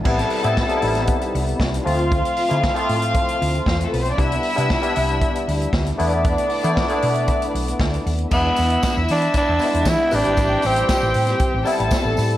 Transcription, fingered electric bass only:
X:1
M:4/4
L:1/16
Q:1/4=116
K:Am
V:1 name="Fingered electric bass" clef=bass
A,,,2 z A,,2 z A,,,3 z C,,2 C,,2 D,,2- | D,,2 z D,2 z A,,3 z D,,2 E,,2 B,,,2 | C,,2 z C,2 z C,,3 z D,,2 D,,2 E,,2- | E,,2 z E,2 z B,,3 z B,,,2 D,,2 ^D,,2 |
E,,2 E,,2 z E,, E,2 z E,, z E,, E, z A,,, ^G,,, | A,,,2 A,,,2 z A,,, A,,2 z A,,, z A,,, z A,,, A,,2 |]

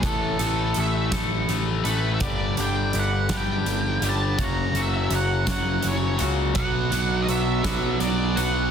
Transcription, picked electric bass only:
X:1
M:6/8
L:1/8
Q:3/8=55
K:Bm
V:1 name="Picked electric bass" clef=bass
A,,, A,,, A,,,2 A,,, A,,, | G,,, G,,, G,,, G,,, G,,, G,,, | F,,, F,,, F,,,2 F,,, C,, | B,,, B,,, B,,, B,,, B,,, B,,, |]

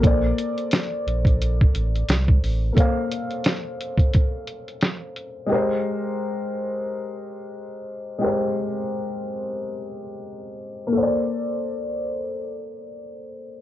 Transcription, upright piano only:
X:1
M:4/4
L:1/8
Q:"Swing 16ths" 1/4=88
K:Bb
V:1 name="Upright piano"
[B,Acd]8 | [B,Acf]8 | [_A,GBc]8 | [_A,GBc]8 |
[B,Acd]8 |]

